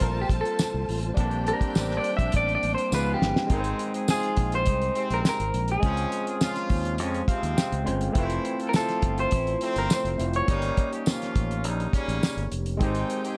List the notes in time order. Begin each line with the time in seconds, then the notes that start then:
Already playing: G3 A3 A#3 C4 F4 A4 C5 A5
0.00 A#1 A#4, kick, closed hi-hat
0.21 G4
0.29 A#1, kick, closed hi-hat
0.41 A4
0.45 closed hi-hat
0.59 snare, tambourine
0.74 C2
0.89 A1, open hi-hat
1.03 closed hi-hat
1.14 A#1 G3 A#3 C4 D4 G4 C5 G5, kick, closed hi-hat
1.19 D4 A5
1.31 closed hi-hat
1.47 A#4, closed hi-hat
1.61 muted fingered electric bass stroke, kick, closed hi-hat
1.75 A1, snare, tambourine
1.91 snare
1.97 D5
2.04 closed hi-hat
2.17 A#1 E5, kick, closed hi-hat
2.32 A1, kick, closed hi-hat
2.36 D5
2.49 closed hi-hat
2.55 D5
2.63 A1, closed hi-hat
2.74 C5, closed hi-hat
2.91 C#2 F3 G#3 B3 C#4 D#4 F4 B4 F5, snare, tambourine
3.14 G4
3.21 G1, snare
3.36 snare
3.47 G#1 D#3 G#3 C4 D#4, kick, closed hi-hat
3.52 A#4 G5
3.60 C5
3.64 closed hi-hat
3.79 closed hi-hat
3.94 G#3 C4 D#4 G#4, closed hi-hat
4.08 F3 G#3 C4 F4 G#4, snare, tambourine
4.23 closed hi-hat
4.37 A#1, kick, closed hi-hat
4.52 C5, closed hi-hat
4.66 C2 D#3 G#3 C4 D#4, kick, closed hi-hat
4.82 closed hi-hat
4.95 C3 G#3 C4, closed hi-hat
5.10 A#1 A#4, closed hi-hat
5.25 A#4, snare, tambourine
5.40 G#1, closed hi-hat
5.54 A#1, closed hi-hat
5.68 G#4, closed hi-hat
5.80 C#2 C#3 F3 G#3 C4 C#4, kick, closed hi-hat
5.85 F4 C5
5.97 closed hi-hat
6.12 closed hi-hat
6.26 G#3 C#4 F4 G#4, closed hi-hat
6.40 F3 C#4 F4, snare, tambourine
6.56 snare, closed hi-hat
6.69 D#2, kick, open hi-hat
6.85 closed hi-hat
6.98 F2 C#3 F3 G#3 C#4, closed hi-hat
7.14 closed hi-hat
7.28 C3 F3 G#3 C4 F5, kick, closed hi-hat
7.43 D#2, closed hi-hat
7.57 G5, snare, tambourine
7.72 C#2, closed hi-hat
7.84 G1 G#3 C4 C#4 F4 C5 C6, closed hi-hat
8.01 closed hi-hat
8.12 F1 E3 A3 C4 E4, kick, closed hi-hat
8.17 F4 B4
8.25 C5
8.30 closed hi-hat
8.45 closed hi-hat
8.59 A3 F4 A4, closed hi-hat
8.69 A#4
8.73 F3 A3 C4 F4 A4, snare, tambourine
8.89 snare, closed hi-hat
9.02 G1, kick, closed hi-hat
9.18 C5, closed hi-hat
9.31 A1 E3 A3 C4 E4, kick, closed hi-hat
9.47 closed hi-hat
9.61 F3 A3 C4, closed hi-hat
9.76 G1 A#4, closed hi-hat
9.90 C5, snare, tambourine
10.05 F1, closed hi-hat
10.18 F1 A3 C4 E4 F4 C5, closed hi-hat
10.33 C#5, closed hi-hat
10.45 G1 D#3 G3 A#3 C#4 D#4, kick, closed hi-hat
10.49 G4 C#5
10.62 closed hi-hat
10.77 kick, closed hi-hat
10.92 G3 C#4 D#4 G4, closed hi-hat
11.06 F3 A#3 C#4 F4, snare, tambourine
11.22 snare, closed hi-hat
11.36 A1, kick, closed hi-hat
11.51 closed hi-hat
11.64 A#1 D#3 G3 A#3 D#4, closed hi-hat
11.80 closed hi-hat
11.93 C#3 G3 A#3 C#4, kick, closed hi-hat
12.08 A1, closed hi-hat
12.23 snare, tambourine
12.37 G1, closed hi-hat
12.52 F1, closed hi-hat
12.66 closed hi-hat
12.77 G#1 D#3 G#3 C4 D#4 G4 G5, kick, closed hi-hat
12.82 G4 C5
12.95 closed hi-hat
13.10 closed hi-hat
13.24 G#3 C4 D#4 G#4, closed hi-hat